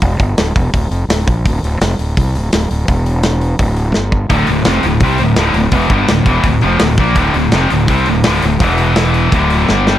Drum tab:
HH |oooooooo|oooooooo|oooooo--|oooooooo|
SD |--o---o-|--o---o-|--o---o-|--o---o-|
BD |oo-oo--o|o---o---|o---o--o|o---o---|

HH |oooooooo|oooooooo|oooooo--|
SD |--o---o-|--o---o-|--o---oo|
BD |oo-oo--o|o---o---|o---o---|